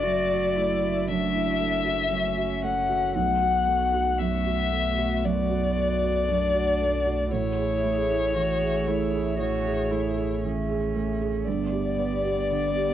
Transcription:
Already playing: F#1 F#2 A3 F#4 D5 E5
0.03 F#3 F#4
0.32 F#4
0.56 A3 E4
0.83 F#4
1.08 F#2 D4 E5
1.35 E4
1.60 A3
1.85 F#4
2.11 F#3 C#4
2.37 F#4
2.63 A3 F#5
2.89 F#4
3.15 B1 A3 B3 F#4 F#5
3.41 F#4
3.67 A3
3.94 F#4
4.19 F#2 B3 E5
4.46 F#4
4.72 A3
4.98 F#4
5.24 F#2 D5
5.50 F#4
5.77 A3
6.02 F#4
6.28 F#2 D4
6.55 F#4
6.81 A3
7.06 F#4
7.31 A1 A2 A3 E4 G#4 C#5 E5
7.59 G#4
7.84 A3
8.10 G#4
8.36 E3 F#4
8.62 G#4
8.87 A3 E4
9.13 G#4
9.39 E3 F#4 C#5
9.66 G#4
9.91 A3 E4
10.18 G#4
10.44 E3 C#4
10.69 G#4
10.96 A3
11.21 G#4
11.45 G1 G2 B3 G4 D5
11.73 G4
11.99 B3
12.25 G4
12.51 D3
12.76 G4

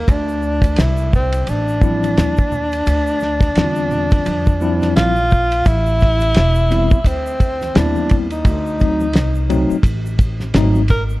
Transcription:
Already playing: A#3
0.08 D2 D4, kick, ride, shaker
0.28 shaker
0.42 shaker
0.62 kick, ride, high conga, shaker
0.76 C2 E4, snare, hi-hat pedal, ride, shaker
0.97 shaker
1.13 C4, kick, low conga, shaker
1.32 ride, shaker
1.47 A1 D4, ride, shaker
1.68 shaker
1.81 F3 G3 C4 E4, kick, shaker
2.03 ride, high conga, shaker
2.17 D#2, snare, hi-hat pedal, ride, low conga, shaker
2.37 kick, high conga, shaker
2.52 low conga, shaker
2.72 ride, shaker
2.86 D2, ride, shaker
3.07 shaker
3.20 snare, shaker
3.40 kick, ride, high conga, shaker
3.55 E2 D3 G3 C4 E4, snare, hi-hat pedal, ride, shaker
3.64 F4
3.76 shaker
3.91 low conga, shaker
4.11 kick, ride, shaker
4.25 F2, ride, shaker
4.46 kick, shaker
4.61 F3 G3 C4 E4, shaker
4.82 snare, ride, high conga, shaker
4.96 A#1 F4, snare, hi-hat pedal, ride, low conga, shaker
5.16 high conga, shaker
5.31 kick, low conga, shaker
5.51 ride, shaker
5.65 A1 E4, kick, ride, shaker
5.86 shaker
6.00 kick, ride, shaker
6.20 ride, high conga, shaker
6.34 E1, snare, hi-hat pedal, ride, shaker
6.55 shaker
6.70 G3 B3 C4 E4, ride, low conga, shaker
6.91 muted upright bass stroke, kick, shaker
7.04 D2 C4, kick, ride, shaker
7.26 shaker
7.40 kick, ride, shaker
7.61 snare, ride, high conga, shaker
7.75 D#2 G3 B3 C4 D4 E4, snare, hi-hat pedal, ride, low conga, shaker
7.96 high conga, shaker
8.09 kick, ride, low conga, shaker
8.30 D#4, ride, shaker
8.45 D2, kick, ride, shaker
8.66 shaker
8.79 F#3 A3 C4 D#4, kick, ride, shaker
9.00 high conga, shaker
9.13 C2, snare, hi-hat pedal, ride, shaker
9.35 shaker
9.49 F#3 A3 C4 D#4, ride, low conga, shaker
9.70 muted upright bass stroke, shaker
9.83 A1, kick, ride, shaker
10.06 shaker
10.19 kick, ride, shaker
10.40 snare, high conga, shaker
10.54 G#1 F#3 A3 C4 D#4, snare, hi-hat pedal, ride, low conga, shaker
10.75 high conga, shaker
10.88 A#4, kick, ride, low conga, shaker
11.09 shaker

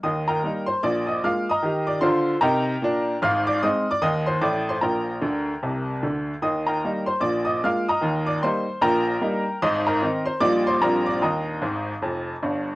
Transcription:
0.03 D#2 D#3 D#5 D#6
0.28 A#4 G5 A#5
0.43 G3 A#3 D#4
0.66 C5 C6
0.83 A#1 A#2 D5 D6
1.07 D#5 D#6
1.24 G#3 A#3 F4 F5 D6 F6
1.50 D#5 A#5 D#6
1.63 D#3 G4
1.87 D5 D6
2.01 D3 F4 C5 C6
2.41 C3 D#4 A#4 G5 A#5
2.82 A#2 D4
3.22 G#1 G#2 F5 F6
3.47 D5 D6
3.63 G#3 C4 D#4 D#5 C6 D#6
3.91 D5 D6
4.02 D#2 D#3 D#5 D#6
4.26 C5 C6
4.41 A1 A2 D5 D6
4.69 C5 C6
4.81 A#1 A#2 A#4 G5 A#5
5.21 D2 D3
5.63 C2 C3
6.03 D2 D3
6.42 D#2 D#3 D#5 D#6
6.67 A#4 G5 A#5
6.84 G3 A#3 D#4
7.06 C5 C6
7.20 A#1 A#2 D5 D6
7.45 D#5 D#6
7.64 G#3 A#3 F4 F5 D6 F6
7.88 D#5 A#5 D#6
8.01 D#2 D#3
8.26 D5 D6
8.43 G3 A#3 D#4 C5 C6
8.81 A#1 A#2 A#4 G5 A#5
9.21 G3 A#3 D#4
9.62 G#1 G#2 D#5 D#6
9.87 A#4 D#5 A#5
10.02 D#3 C4 D#4
10.25 C5 C6
10.40 A#1 A#2 G3 A#3 D#4 D5 D6
10.67 C5 C6
10.81 A#1 A#2 G3 C4 D4 A#4 A#5
11.06 D5 D6
11.21 D#2 D#3 D#5 A#5 D#6
11.62 G#1 G#2
12.02 F1 F2
12.43 G1 G2

